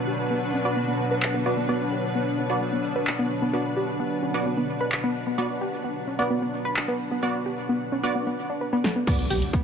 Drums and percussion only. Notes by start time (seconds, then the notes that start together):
1.23 clap
3.07 clap
4.92 clap
6.77 clap
8.84 snare
9.07 kick, closed hi-hat, crash
9.19 closed hi-hat
9.30 open hi-hat
9.42 closed hi-hat
9.53 kick, closed hi-hat